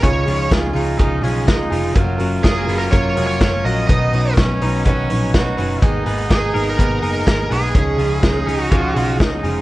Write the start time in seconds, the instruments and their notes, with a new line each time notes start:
0.02 picked electric bass C#2, steel-string acoustic guitar C#3 G#3 D#4 F4 G#4, trumpet C#4, lead electric guitar C#5, kick, hi-hat pedal, ride
0.26 picked electric bass C#2, clean electric guitar F3, steel-string acoustic guitar D#4 F4 G#4, open hi-hat
0.49 picked electric bass C#2, steel-string acoustic guitar G#3 D#4 F4 G#4, trumpet F4, kick, snare, hi-hat pedal, ride
0.73 picked electric bass C#2, steel-string acoustic guitar D#4 F4 G#4, open hi-hat
0.97 picked electric bass C#2, steel-string acoustic guitar C#3 G#3 D#4 F4 G#4, clean electric guitar F3, trumpet D#4, kick, hi-hat pedal, ride
1.21 picked electric bass B1, clean electric guitar G#3, trumpet C#4, steel-string acoustic guitar D#4 F4 G#4, open hi-hat
1.46 picked electric bass C#2, steel-string acoustic guitar G#3 D#4 F4 G#4, trumpet D#4, kick, snare, hi-hat pedal, ride
1.70 picked electric bass F1, clean electric guitar F3, steel-string acoustic guitar D#4 F4 G#4, open hi-hat
1.93 picked electric bass F#1, clean electric guitar F#2, steel-string acoustic guitar F#3 C#4 F#4 A#4, trumpet F4, kick, hi-hat pedal, ride
2.18 picked electric bass F#1, clean electric guitar F#3, steel-string acoustic guitar C#4 F#4 A#4, open hi-hat
2.42 picked electric bass F#1, steel-string acoustic guitar F#3 C#4 F#4 A#4, clean electric guitar G#3, lead electric guitar G#4, kick, snare, hi-hat pedal, ride
2.57 clean electric guitar A#3
2.66 picked electric bass F#1, clean electric guitar B3, steel-string acoustic guitar C#4 F#4 A#4, open hi-hat
2.78 clean electric guitar C#4, lead electric guitar A#4
2.91 picked electric bass F#1, steel-string acoustic guitar F#3 C#4 F#4 A#4, lead electric guitar C#5, kick, hi-hat pedal, ride
3.15 picked electric bass F1, clean electric guitar G#3, steel-string acoustic guitar C#4 F#4 A#4, open hi-hat
3.27 clean electric guitar A#3, lead electric guitar C#5
3.39 picked electric bass F#1, steel-string acoustic guitar F#3 C#4 F#4 A#4, kick, snare, hi-hat pedal, ride
3.64 picked electric bass A#1, clean electric guitar F#3, steel-string acoustic guitar C#4 F#4 A#4, lead electric guitar D#5, open hi-hat
3.87 picked electric bass B1, steel-string acoustic guitar B2 D#3 F#3 C#4 D#4 B4, trumpet D#4, lead electric guitar D#5, kick, hi-hat pedal, ride
4.12 picked electric bass B1, steel-string acoustic guitar F#3 C#4 D#4 B4, open hi-hat
4.36 picked electric bass B1, steel-string acoustic guitar F#3 C#4 D#4 B4, trumpet C#4, kick, snare, hi-hat pedal, ride
4.62 picked electric bass B1, steel-string acoustic guitar F#3 C#4 D#4 B4, open hi-hat
4.85 picked electric bass B1, steel-string acoustic guitar B2 D#3 F#3 C#4 D#4 B4, trumpet C#4, kick, hi-hat pedal, ride
5.10 picked electric bass A#1, steel-string acoustic guitar F#3 C#4 D#4 B4, open hi-hat
5.34 picked electric bass B1, steel-string acoustic guitar F#3 C#4 D#4, trumpet F#4, kick, snare, hi-hat pedal, ride
5.38 steel-string acoustic guitar B4
5.57 picked electric bass F#1, steel-string acoustic guitar F#3 C#4 D#4 B4, open hi-hat
5.81 picked electric bass G#1, steel-string acoustic guitar G#2 D#3 A#3 B3 D#4 G#4, trumpet D#4, kick, hi-hat pedal, ride
6.06 picked electric bass G#1, steel-string acoustic guitar A#3 B3 D#4 G#4, open hi-hat
6.30 picked electric bass G#1, steel-string acoustic guitar A#3 B3 D#4 G#4, lead electric guitar G#4, kick, snare, hi-hat pedal, ride
6.53 picked electric bass G#1, steel-string acoustic guitar A#3 B3 D#4 G#4, clean electric guitar A#4, open hi-hat
6.69 lead electric guitar A#4
6.78 picked electric bass G#1, steel-string acoustic guitar G#2 D#3 A#3 B3 D#4 G#4, kick, hi-hat pedal, ride
7.02 picked electric bass F#1, steel-string acoustic guitar A#3 B3 D#4 G#4, open hi-hat
7.25 picked electric bass G#1, steel-string acoustic guitar A#3 B3 D#4 G#4, clean electric guitar A#4, kick, snare, hi-hat pedal, ride
7.49 picked electric bass B1, steel-string acoustic guitar A#3 B3 D#4 G#4, lead electric guitar G#4, open hi-hat
7.74 picked electric bass C#2, steel-string acoustic guitar C#3 F3 G#3 C#4 D#4 G#4, trumpet C#4, kick, hi-hat pedal, ride
7.98 picked electric bass C#2, clean electric guitar F3, steel-string acoustic guitar G#3 C#4 D#4 G#4, open hi-hat
8.23 picked electric bass C#2, steel-string acoustic guitar G#3 C#4 D#4 G#4, trumpet D#4, kick, snare, hi-hat pedal, ride
8.46 picked electric bass C#2, steel-string acoustic guitar G#3 C#4 D#4 G#4, open hi-hat
8.59 clean electric guitar D#4, lead electric guitar F#4
8.70 picked electric bass C#2, steel-string acoustic guitar C#3 F3 G#3 C#4 D#4 G#4, trumpet F4, kick, hi-hat pedal, ride
8.94 picked electric bass B1, steel-string acoustic guitar G#3 C#4 D#4 G#4, trumpet F4, open hi-hat
9.18 picked electric bass C#2, steel-string acoustic guitar G#3 C#4 D#4 G#4, trumpet D#4, kick, snare, hi-hat pedal, ride
9.43 picked electric bass F1, clean electric guitar F3, steel-string acoustic guitar G#3 C#4 D#4 G#4, open hi-hat